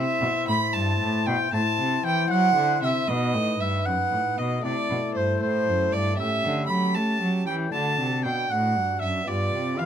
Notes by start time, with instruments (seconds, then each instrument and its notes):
Already playing: pipe organ C3 E4 C5, violin E5, oboe E5
0.21 cello B2, pipe organ B2
0.48 cello A2, pipe organ A2, violin B5, oboe B5
0.74 cello G2, pipe organ G2, violin A5, oboe A5
1.00 cello A2, pipe organ A2
1.26 cello B2, pipe organ B2, violin G5, oboe G5
1.53 cello A2, pipe organ A2 E4 C5, violin A5, oboe A5
1.78 cello C3, pipe organ C3
2.04 cello E3, pipe organ E3, oboe G5, violin G5
2.30 cello F#3, pipe organ F#3, violin F#5, oboe F#5
2.55 cello D3, pipe organ D3
2.81 cello C3, pipe organ C3, violin E5, oboe E5
3.07 cello B2, pipe organ B2 D#4 B4, violin D#5, oboe D#5
3.34 cello A2, pipe organ A2
3.60 pipe organ G2, cello G2, violin E5, oboe E5
3.86 pipe organ F#2, cello F#2, oboe F#5, violin F#5
4.12 pipe organ A2, cello A2
4.38 cello B2, pipe organ B2, oboe D#5, violin D#5
4.60 pipe organ C3 A3 E4 A4, violin D5
4.65 cello C3, oboe D5
4.89 pipe organ B2, cello B2
5.15 pipe organ G2, cello G2, violin C5, oboe C5
5.40 cello A2, pipe organ A2, violin C5, oboe C5
5.67 pipe organ F#2, cello F#2
5.92 pipe organ G2, cello G2, violin D5, oboe D5
6.14 pipe organ A3 C#4 G4, violin E5
6.18 pipe organ A2, cello A2, oboe E5
6.44 pipe organ D3, cello D3
6.67 cello F#3, pipe organ F#3, violin B5, oboe B5
6.94 pipe organ A3, cello A3, violin A5, oboe A5
7.21 cello F#3, pipe organ F#3
7.46 pipe organ E3, cello E3, violin G5, oboe G5
7.69 pipe organ A3 D4 F#4, oboe A5, violin A5
7.74 pipe organ D3, cello D3
7.99 pipe organ C3, cello C3
8.23 cello B2, pipe organ B2, oboe G5, violin G5
8.49 cello A2, pipe organ A2, oboe F#5, violin F#5
8.76 cello G2, pipe organ G2
8.99 cello F#2, pipe organ F#2, oboe E5, violin E5
9.24 cello G2, pipe organ B3 F4 G4, oboe D5, violin D5
9.28 pipe organ G2
9.54 pipe organ C3, cello C3
9.78 pipe organ E3, cello E3, oboe F5, violin F5